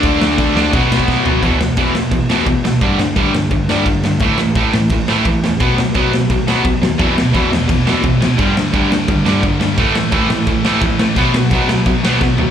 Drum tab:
CC |x---x---x-------|x---x---x---x---|x---x---x---x---|x---x---x---x---|
SD |--o---o---o-o---|--o---o---o---o-|--o---o---o---o-|--o---o---o---o-|
FT |--------------o-|----------------|----------------|----------------|
BD |o---o---o--oo---|o---o---o---o---|o---o---o---o---|o---o---o---o---|

CC |x---x---x---x---|x---x---x---x---|x---x---x---x---|x---x---x---x---|
SD |--o---o---o---o-|--o---o---o---o-|--o---o---o---o-|--o---o---o---o-|
FT |----------------|----------------|----------------|----------------|
BD |o---o---o---o---|o---o---o---o---|o---o---o---o---|o---o---o---o---|

CC |x---x---x-------|
SD |--o---o---o-o---|
FT |--------------o-|
BD |o---o---o---o---|